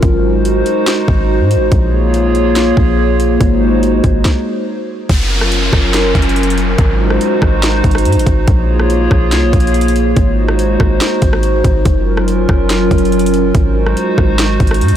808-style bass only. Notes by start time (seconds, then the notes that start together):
0.03 G#1
1.08 G#1
1.40 G#2
1.56 G#1
1.72 A#1
2.77 A#1
3.41 G#1
4.04 G#1
5.09 F#1
5.73 F#1
6.15 F#1
6.79 G#1
7.42 G#1
7.84 G#1
8.05 G#2
8.16 G#1
8.26 G#1
8.48 A#1
9.11 A#1
9.32 C2
9.43 A#1
9.53 A#1
10.16 G#1
10.80 G#1
11.22 G#1
11.64 G#1
11.85 F#1
12.49 F#1
12.91 F#1
13.55 G#1
14.18 G#1
14.60 G#1
14.82 G#2
14.92 G#1